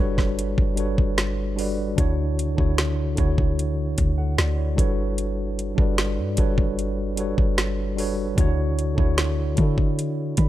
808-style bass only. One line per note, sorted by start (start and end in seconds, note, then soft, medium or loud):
0.00 0.56 G1 loud
0.58 0.97 G1 loud
0.98 1.94 G1 loud
1.98 2.56 D2 loud
2.58 3.16 D2 loud
3.19 3.95 D2 loud
3.99 4.37 D2 loud
4.38 4.77 D2 loud
4.78 5.74 G1 loud
5.78 6.20 G1 loud
6.18 6.37 G2 medium
6.38 7.34 G1 loud
7.38 8.34 G1 medium
8.38 8.96 D2 loud
8.98 9.56 D2 loud
9.58 10.35 D3 loud
10.38 10.49 D3 loud